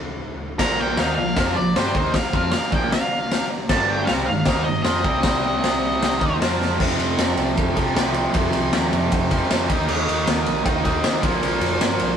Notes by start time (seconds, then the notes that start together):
0.59 A#1 A#2 F3 A#3 A#5, kick, snare, crash
0.81 G5
0.97 D#2 D#3 A#3 D#4 F5, snare, open hi-hat
1.15 A#1 A#2 F3 F5
1.36 F2 F3 C4 F4, kick, snare, open hi-hat
1.56 A#1 A#2 F3 D5
1.76 G2 G3 D4 G4 C5, snare, open hi-hat
1.95 D#2 D#3 A#3 D#4 C5, kick
2.14 F5, muted overdriven electric guitar stroke, muted picked electric bass stroke, kick, snare, open hi-hat
2.33 F2 F3 C4 F4, kick
2.51 F5, muted picked electric bass stroke, muted overdriven electric guitar stroke, snare, open hi-hat
2.71 A#1 A#2 F3 A#3 G5, kick
2.92 F5, snare, open hi-hat
3.31 snare, open hi-hat
3.69 G1 G2 D3 G3 A5, kick, snare, crash
3.90 G5
4.05 C2 C3 F5, snare, open hi-hat
4.09 G3 C4
4.26 G1 G#2 D#3 F5
4.45 D#2 D#3 A#3 D#4, kick, snare, open hi-hat
4.64 G1 G#2 D#3 D#5
4.82 F2 F3 C4 F4 D#5, snare, open hi-hat
5.04 C2 C3 G3 C4, kick
5.23 C2 C3 G3 C4, kick, snare, open hi-hat
5.64 snare, open hi-hat
6.02 snare, open hi-hat
6.19 D#2 D#3 A#3 D#4, kick
6.39 F2 F3 C4 F4, snare, open hi-hat
6.61 snare
6.78 F1 F2 C3, kick, crash
6.82 F3
6.99 F1, ride
7.18 F1, snare, ride
7.37 C2, ride
7.57 F1, kick, ride
7.76 F1 C3 F3, kick, ride
7.80 F2
7.94 C2 F2 C3, snare, ride
7.99 F3
8.14 ride
8.32 F1 F2 C3, kick, ride
8.37 F3
8.53 C2, ride
8.73 D#2, snare, ride
8.93 F1, ride
9.12 F1, kick, ride
9.30 C3 F3, kick, ride
9.35 F2
9.49 F2 C3 F3, snare, ride
9.69 D#2 D#3 A#3, kick, ride
9.73 D#4
9.88 D#2, crash
10.09 D#2, ride
10.27 D#2, snare, ride
10.46 A#1, ride
10.65 D#2 D#3 A#3 D#4, kick, ride
10.83 D#2 A#3 D#4, kick, ride
10.88 D#3
11.04 A#2, snare, ride
11.21 A#1 A#2 F3, kick, ride
11.26 A#3
11.43 A#1, ride
11.61 F1, ride
11.81 G2, snare, ride
11.99 A#1, ride